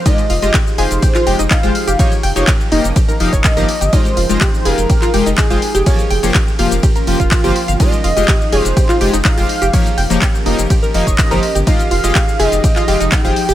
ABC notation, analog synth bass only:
X:1
M:4/4
L:1/16
Q:1/4=124
K:Fm
V:1 name="Analog synth bass" clef=bass
z2 F,,, F,,, z2 F,,, F,,, z2 F,,, F,,, z F,,, z F,,, | z2 F,,, F,,, z2 F,,, F,,, z2 F,,, F,,, z G,,, z G,,, | z2 F,,, F,,, z2 F,,, F,,, z2 F,,, F,,, z F,,, z F,,, | z2 F,,, F,,, z2 F,,, F,,, z2 F,,, F,,, z G,,, z G,,, |
z2 F,,, F,,, z2 F,,, F,,, z2 F,,, F,,, z F,,, z F,,, | z2 F,,, F,,, z2 F,,, F,,, z2 F,,, F,,, z G,,, z G,,, | z2 F,,, F,,, z2 F,,, F,,, z2 F,,, F,,, z F,,, z F,,, |]